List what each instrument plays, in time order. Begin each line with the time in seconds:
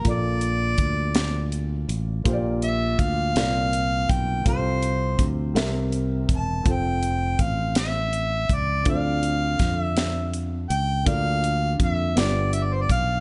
0.02 fingered electric bass A#1, upright piano A#2 A#3 F4, kick, closed hi-hat
0.06 upright piano A4 D5, harmonica D5
0.41 closed hi-hat
0.78 fingered electric bass D2, kick, closed hi-hat
1.15 snare, closed hi-hat
1.52 closed hi-hat
1.89 fingered electric bass A1, closed hi-hat
2.24 fingered electric bass A#1, upright piano A#2 A#3 F4 G4 C5, kick, closed hi-hat
2.33 upright piano D5
2.62 harmonica E5, closed hi-hat
2.99 fingered electric bass D2, harmonica F5, kick, closed hi-hat
3.35 fingered electric bass C2, upright piano A#2 C4 E4 A#4 D5, snare, closed hi-hat
3.43 upright piano F4
3.73 closed hi-hat
4.09 fingered electric bass B1, harmonica G5, kick, closed hi-hat
4.44 fingered electric bass C2, upright piano C3 C4 F4 A4 F5, kick, closed hi-hat
4.48 harmonica C5
4.83 closed hi-hat
5.19 fingered electric bass D2, kick, closed hi-hat
5.54 fingered electric bass C2, upright piano C3 C4 G4 A#4 E5, snare, closed hi-hat
5.92 closed hi-hat
6.29 fingered electric bass E1, kick, closed hi-hat
6.36 harmonica A5
6.63 fingered electric bass F1, upright piano C4 F4 A4, kick, closed hi-hat
6.68 upright piano C5, harmonica G5
7.03 closed hi-hat
7.39 fingered electric bass A1, harmonica F5, kick, closed hi-hat
7.75 harmonica E5, snare, closed hi-hat
8.13 closed hi-hat
8.49 fingered electric bass C#2, kick, closed hi-hat
8.54 harmonica D5
8.83 fingered electric bass D2, upright piano D3 C4 F4 A4, kick, closed hi-hat
8.88 upright piano C5, harmonica F5
8.95 upright piano D5
9.23 closed hi-hat
9.59 fingered electric bass F2, kick, snare, closed hi-hat
9.80 harmonica E5
9.97 snare, closed hi-hat
10.33 closed hi-hat
10.70 fingered electric bass C#2, harmonica G5, closed hi-hat
11.05 fingered electric bass D2, upright piano D3 A#3 F4 A4 D5, harmonica F5, kick, closed hi-hat
11.44 closed hi-hat
11.80 fingered electric bass F2, harmonica E5, kick, closed hi-hat
12.16 fingered electric bass G1, upright piano G2 B3 F4 G4 D5, harmonica D5, snare, closed hi-hat
12.53 harmonica E5, closed hi-hat
12.63 harmonica D5
12.73 harmonica C5
12.81 harmonica D5
12.89 fingered electric bass B1, harmonica F5, kick, closed hi-hat